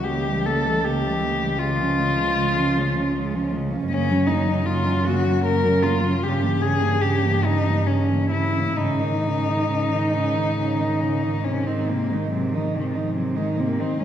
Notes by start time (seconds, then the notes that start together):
Already playing: C#2
0.04 C#3 G4
0.08 A#3
0.25 E3 G3
0.45 C#3 A#3 A4
0.65 E3
0.69 G3
0.84 C#3 A#3 G4
1.04 E3 G3
1.23 C#3 A#3
1.41 E3 G3
1.59 C#3 G#3 F4
1.80 F3 C#4
1.98 C#3 G#3
2.17 F3 C#4
2.38 C#3 G#3
2.56 F3 C#4
2.77 C#3 G#3
2.96 F3 C#4
3.15 C#3 G#3
3.34 F3 C#4
3.52 C#3 G#3
3.70 F3 C#4
3.89 F#2 C#3 A#3 C#4
4.10 F#3 C#4
4.27 C#3 A#3 D#4
4.48 F#3 C#4
4.65 C#3 A#3 F4
4.85 F#3 C#4
5.04 C#3 A#3 F#4
5.25 F#3 C#4
5.45 C#3 A#3 A#4
5.64 F#3 C#4
5.82 C#3 A#3 F4
6.00 F#3 C#4
6.20 G2 C#3 G4
6.25 C#4
6.40 E3 A#3
6.60 C#3 C#4 G#4
6.80 E3 A#3
7.01 C#3 C#4 G4
7.22 E3 A#3
7.43 C#3 C#4 D#4
7.65 E3 A#3
7.86 C#3 C#4
7.90 C#4
8.09 E3
8.13 A#3
8.30 C#3 E4
8.36 C#4
8.54 E3
8.59 A#3
8.76 G#2 C#3 D#4
8.80 C#4
9.00 D#3 D#4
9.22 C#3 C#4
9.45 D#3 D#4
9.67 C#3 C#4
9.89 D#3 D#4
10.10 C#3 C#4
10.33 D#3 D#4
10.56 C#3 C#4
10.77 D#3 D#4
11.00 C#3 C#4
11.23 D#3 D#4
11.44 C3 C4 C#4
11.66 D#3 C4 D#4
11.88 C3 A#3 C4
12.10 D#3 G#3 D#4
12.31 C3 F#3 C4
12.52 D#3 F3 D#4
12.72 C3 D#3 C4
12.93 D#3 F3 D#4
13.14 C3 F#3 C4
13.36 D#3 G#3 D#4
13.57 C3 A#3 C4
13.78 D#3 C4 D#4
13.98 C#2 G#3 C#4